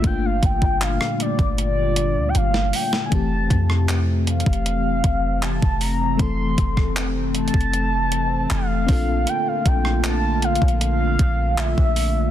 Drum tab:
HH |x-----x-----x-----x--x--x-----x-----x-----o-----|x-----x-----x-----x-x-x-x-----x-----x-----o-----|x-----x-----x-----x-x-x-x-----x-----x-----o-----|x-----x-----x-----x-x-x-x-----x-----x-----o-----|
CP |------------x-----------------------------------|------------x-----------------------x-----------|------------x-----------------------x-----------|------------x-----------------------x-----------|
SD |---------------r-----------------------o-----o--|---------r--------------------------------------|---------r--------------------------------------|---------r--------------------------------------|
BD |o-----o--o-----------o--------------------------|o-----o--------------o--------o--------o--------|o-----o--o-----------o--------------------o-----|------o--------------o--------o--------o--------|